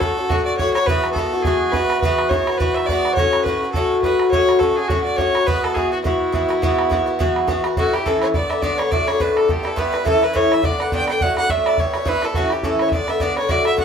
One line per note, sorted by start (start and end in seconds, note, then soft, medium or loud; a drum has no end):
0.00 0.17 A2 medium
0.00 0.18 F#3 medium
0.00 0.18 C#4 medium
0.00 0.16 F#4 medium
0.00 0.31 A4 medium
0.00 bodhran medium
0.17 0.29 F#3 soft
0.17 0.30 C#4 soft
0.17 0.30 F#4 soft
0.29 0.58 A2 medium
0.29 0.60 F#3 medium
0.29 0.60 C#4 medium
0.29 0.45 F#4 medium
0.29 0.61 F#4 medium
0.29 bodhran medium
0.46 0.57 D5 medium
0.57 0.76 A2 medium
0.57 0.76 F#3 medium
0.57 0.75 C#4 medium
0.57 0.73 C#5 loud
0.57 bodhran medium
0.62 0.74 F#4 medium
0.74 0.89 C#4 soft
0.74 0.88 F#4 medium
0.74 0.88 C#5 medium
0.74 bodhran medium
0.78 0.89 F#3 soft
0.86 1.15 G#2 medium
0.86 1.16 E3 medium
0.86 1.17 B3 medium
0.86 1.19 F#4 medium
0.86 1.12 B4 loud
0.86 bodhran medium
1.04 bodhran medium
1.13 1.33 G#2 medium
1.13 1.44 A4 medium
1.13 bodhran medium
1.17 1.33 E3 medium
1.17 1.33 B3 medium
1.17 1.32 F#4 medium
1.33 1.45 E3 soft
1.33 1.45 B3 soft
1.33 1.46 F#4 soft
1.42 1.72 G#2 medium
1.42 1.73 E3 medium
1.42 1.74 B3 medium
1.42 1.73 G#4 medium
1.42 bodhran medium
1.47 1.76 F#4 medium
1.72 2.02 G#2 medium
1.72 2.03 E3 medium
1.72 2.04 B3 medium
1.72 2.00 B4 loud
1.72 bodhran medium
1.76 2.05 F#4 medium
1.90 bodhran medium
2.01 2.30 G#2 medium
2.01 2.31 E3 medium
2.01 2.32 B3 medium
2.01 2.31 B4 medium
2.01 bodhran medium
2.05 2.33 F#4 medium
2.19 bodhran medium
2.29 2.47 G#2 medium
2.29 2.48 E3 medium
2.29 2.48 B3 medium
2.29 2.59 C#5 medium
2.29 bodhran medium
2.34 2.47 F#4 medium
2.47 2.59 E3 soft
2.47 2.60 B3 soft
2.47 2.60 F#4 soft
2.47 bodhran medium
2.58 2.88 G#2 medium
2.58 2.89 E3 medium
2.58 2.89 B3 medium
2.58 2.76 B4 medium
2.58 bodhran medium
2.62 2.91 F#4 medium
2.74 2.88 E5 medium
2.74 bodhran medium
2.86 3.17 G#2 medium
2.86 3.18 E3 medium
2.86 3.14 D5 loud
2.86 bodhran medium
2.91 3.19 B3 medium
2.91 3.19 F#4 medium
3.05 bodhran medium
3.15 3.45 A2 medium
3.15 3.45 C#5 medium
3.15 bodhran medium
3.19 3.47 F#3 medium
3.19 3.47 C#4 medium
3.19 3.49 F#4 medium
3.33 bodhran medium
3.44 3.63 A2 medium
3.44 3.63 F#3 medium
3.44 3.71 B4 medium
3.44 bodhran medium
3.48 3.63 C#4 medium
3.48 3.62 F#4 medium
3.63 3.75 F#3 soft
3.63 3.76 C#4 soft
3.63 3.75 F#4 soft
3.72 4.03 A2 medium
3.72 4.00 A4 medium
3.72 bodhran medium
3.76 4.04 F#3 medium
3.76 4.04 C#4 medium
3.76 4.06 F#4 medium
4.02 4.32 A2 medium
4.02 4.33 F#3 medium
4.02 4.33 C#4 medium
4.02 4.30 B4 medium
4.02 bodhran medium
4.06 4.34 F#4 medium
4.19 bodhran medium
4.31 4.59 A2 medium
4.31 4.61 F#3 medium
4.31 4.61 C#4 medium
4.31 4.63 F#4 medium
4.31 4.61 C#5 loud
4.31 bodhran medium
4.49 bodhran medium
4.59 4.77 A2 medium
4.59 4.78 F#3 soft
4.59 4.78 C#4 medium
4.59 4.76 F#4 medium
4.59 4.77 A4 medium
4.59 bodhran medium
4.76 4.90 C#4 soft
4.76 4.90 F#4 soft
4.76 4.89 G#4 loud
4.80 4.89 F#3 soft
4.88 5.17 A2 medium
4.88 5.19 F#3 medium
4.88 5.19 C#4 medium
4.88 5.03 F#4 medium
4.88 5.20 F#4 medium
4.88 bodhran medium
5.04 5.18 D5 medium
5.17 5.35 A2 medium
5.17 5.35 F#3 medium
5.17 5.35 C#4 medium
5.17 5.48 C#5 loud
5.17 bodhran medium
5.21 5.33 F#4 medium
5.34 5.47 F#3 soft
5.34 5.47 C#4 soft
5.34 5.47 F#4 soft
5.34 bodhran medium
5.47 5.74 G#2 medium
5.47 5.76 E3 medium
5.47 5.76 B3 medium
5.47 5.77 F#4 medium
5.47 5.65 B4 loud
5.47 bodhran medium
5.64 5.76 A4 medium
5.64 bodhran medium
5.75 5.92 G#2 medium
5.75 5.92 E3 medium
5.75 5.92 B3 medium
5.75 5.90 F#4 medium
5.75 5.92 G#4 medium
5.75 bodhran medium
5.92 6.04 E3 soft
5.92 6.04 B3 soft
5.92 6.04 F#4 soft
5.92 5.98 F#4 medium
6.03 6.31 G#2 medium
6.03 6.33 E3 medium
6.03 6.33 B3 medium
6.03 7.44 E4 medium
6.03 6.34 F#4 medium
6.03 bodhran medium
6.32 6.49 G#2 medium
6.32 6.50 E3 medium
6.32 6.49 B3 medium
6.32 6.47 F#4 medium
6.32 bodhran medium
6.48 6.62 E3 soft
6.48 6.62 B3 medium
6.48 6.62 F#4 medium
6.48 bodhran medium
6.62 6.88 G#2 medium
6.62 6.90 E3 medium
6.62 6.91 B3 medium
6.62 6.91 F#4 medium
6.62 bodhran medium
6.79 bodhran medium
6.90 7.06 G#2 medium
6.90 7.07 E3 medium
6.90 7.06 B3 medium
6.90 7.05 F#4 medium
6.90 bodhran medium
7.06 7.19 E3 soft
7.06 7.19 B3 medium
7.06 7.19 F#4 soft
7.19 7.46 G#2 medium
7.19 7.47 E3 medium
7.19 7.48 B3 medium
7.19 7.49 F#4 medium
7.19 bodhran medium
7.36 bodhran medium
7.48 7.64 G#2 medium
7.48 7.65 E3 medium
7.48 7.64 B3 medium
7.48 7.63 F#4 medium
7.48 bodhran medium
7.64 7.77 E3 soft
7.64 7.78 B3 soft
7.64 7.77 F#4 medium
7.64 bodhran medium
7.77 7.93 A2 medium
7.77 7.94 E3 medium
7.77 7.93 C#4 medium
7.77 7.92 E4 medium
7.77 7.96 F#4 loud
7.77 bodhran medium
7.93 8.05 E3 soft
7.93 8.06 C#4 soft
7.93 8.06 E4 soft
7.93 8.08 G4 medium
7.93 bodhran medium
8.06 8.34 A2 medium
8.06 8.35 E3 medium
8.06 8.35 C#4 medium
8.06 8.35 E4 medium
8.06 8.21 A4 medium
8.06 bodhran medium
8.22 8.28 C#5 medium
8.22 bodhran medium
8.34 8.50 G2 medium
8.34 8.51 D3 medium
8.34 8.50 B3 medium
8.34 8.49 D4 medium
8.34 8.51 D5 medium
8.34 bodhran medium
8.50 8.62 D3 soft
8.50 8.62 B3 soft
8.50 8.63 D4 medium
8.50 8.64 E5 medium
8.50 bodhran medium
8.62 8.79 G2 medium
8.62 8.79 D3 medium
8.62 8.79 B3 medium
8.62 8.77 D4 medium
8.62 8.80 D5 loud
8.62 bodhran medium
8.78 8.92 D3 soft
8.78 8.92 B3 soft
8.78 8.91 D4 medium
8.78 8.93 C#5 medium
8.78 bodhran medium
8.91 9.08 A2 medium
8.91 9.08 F#3 medium
8.91 9.08 A3 medium
8.91 9.06 D4 medium
8.91 9.09 D5 loud
8.91 bodhran medium
9.07 9.19 F#3 soft
9.07 9.20 A3 soft
9.07 9.20 D4 soft
9.07 9.23 C#5 loud
9.07 bodhran medium
9.20 9.48 A2 medium
9.20 9.49 F#3 medium
9.20 9.49 A3 medium
9.20 9.50 D4 medium
9.20 9.39 B4 medium
9.20 bodhran medium
9.37 9.53 A4 medium
9.37 bodhran medium
9.48 9.65 G2 soft
9.48 9.65 G3 soft
9.48 9.64 B3 medium
9.48 9.62 E4 medium
9.48 9.69 G4 medium
9.48 bodhran medium
9.63 9.76 G3 soft
9.63 9.77 B3 soft
9.63 9.77 E4 medium
9.63 bodhran medium
9.68 9.80 A4 medium
9.76 9.93 G2 medium
9.76 9.93 G3 medium
9.76 9.93 B3 medium
9.76 9.91 E4 medium
9.76 10.07 B4 medium
9.76 bodhran medium
9.92 10.05 G3 soft
9.92 10.06 B3 medium
9.92 10.05 E4 medium
9.92 bodhran medium
10.05 10.22 A2 medium
10.05 10.22 E3 medium
10.05 10.22 C#4 medium
10.05 10.20 E4 medium
10.05 10.25 A4 loud
10.05 bodhran medium
10.21 10.33 E3 soft
10.21 10.33 C#4 soft
10.21 10.34 E4 medium
10.21 10.37 B4 loud
10.21 bodhran medium
10.33 10.62 A2 medium
10.33 10.63 E3 medium
10.33 10.63 C#4 medium
10.33 10.64 E4 medium
10.33 10.55 C#5 loud
10.33 bodhran medium
10.52 10.67 E5 loud
10.52 bodhran medium
10.62 10.79 G2 soft
10.62 10.79 D3 medium
10.62 10.79 B3 medium
10.62 10.77 D4 medium
10.62 10.83 D5 medium
10.62 bodhran medium
10.78 10.92 D3 soft
10.78 10.92 B3 soft
10.78 10.91 D4 soft
10.78 10.93 F#5 medium
10.78 bodhran medium
10.92 11.08 G2 medium
10.92 11.09 D3 medium
10.92 11.08 B3 medium
10.92 11.07 D4 medium
10.92 11.08 G5 loud
10.92 bodhran medium
11.08 11.21 D3 soft
11.08 11.21 B3 medium
11.08 11.21 D4 medium
11.08 11.24 G5 medium
11.08 bodhran medium
11.21 11.37 A2 medium
11.21 11.37 F#3 medium
11.21 11.37 A3 medium
11.21 11.36 D4 medium
11.21 11.37 F#5 loud
11.21 bodhran medium
11.37 11.49 F#3 soft
11.37 11.49 A3 soft
11.37 11.49 D4 medium
11.37 11.52 F#5 loud
11.37 bodhran medium
11.49 11.78 A2 medium
11.49 11.78 F#3 medium
11.49 11.78 A3 medium
11.49 11.79 D4 medium
11.49 11.68 E5 medium
11.49 bodhran medium
11.66 11.81 D5 medium
11.66 bodhran medium
11.78 11.94 G2 soft
11.78 11.95 G3 soft
11.78 11.94 B3 medium
11.78 11.92 E4 medium
11.78 12.10 C#5 medium
11.78 bodhran medium
11.94 12.05 G3 soft
11.94 12.06 B3 soft
11.94 12.06 E4 soft
11.94 bodhran medium
12.05 12.22 G2 medium
12.05 12.23 G3 medium
12.05 12.23 B3 medium
12.05 12.21 E4 medium
12.05 12.26 B4 loud
12.05 bodhran medium
12.22 12.36 G3 soft
12.22 12.36 B3 soft
12.22 12.35 E4 medium
12.22 12.37 A4 medium
12.22 bodhran medium
12.34 12.51 A2 medium
12.34 12.52 E3 medium
12.34 12.52 C#4 medium
12.34 12.51 E4 medium
12.34 12.54 F#4 loud
12.34 bodhran medium
12.50 12.64 C#4 soft
12.50 12.64 E4 soft
12.50 12.66 G4 medium
12.50 bodhran medium
12.55 12.63 E3 soft
12.63 12.92 A2 medium
12.63 12.92 E3 medium
12.63 12.93 C#4 medium
12.63 12.93 E4 medium
12.63 12.83 A4 medium
12.63 bodhran medium
12.79 12.90 C#5 medium
12.79 bodhran medium
12.89 13.08 G2 medium
12.89 13.12 D5 medium
12.89 12.94 E5 medium
12.89 bodhran medium
12.94 13.09 D3 medium
12.94 13.08 B3 medium
12.94 13.06 D4 medium
13.07 13.20 D3 soft
13.07 13.20 B3 soft
13.07 13.20 D4 medium
13.07 13.23 E5 medium
13.07 bodhran soft
13.20 13.37 G2 medium
13.20 13.37 D3 medium
13.20 13.37 B3 medium
13.20 13.35 D4 medium
13.20 13.37 D5 medium
13.20 bodhran medium
13.37 13.48 D3 soft
13.37 13.50 B3 soft
13.37 13.49 D4 medium
13.37 13.52 C#5 medium
13.37 bodhran medium
13.49 13.65 A2 medium
13.49 13.65 D3 medium
13.49 13.64 A3 medium
13.49 13.63 F#4 medium
13.49 13.66 D5 loud
13.49 bodhran medium
13.64 13.76 D3 soft
13.64 13.77 A3 soft
13.64 13.77 F#4 medium
13.64 13.77 E5 medium
13.64 bodhran medium
13.76 13.85 A2 medium
13.76 13.85 D3 medium
13.76 13.85 A3 medium
13.76 13.85 F#4 medium
13.76 13.85 F#5 medium
13.76 bodhran medium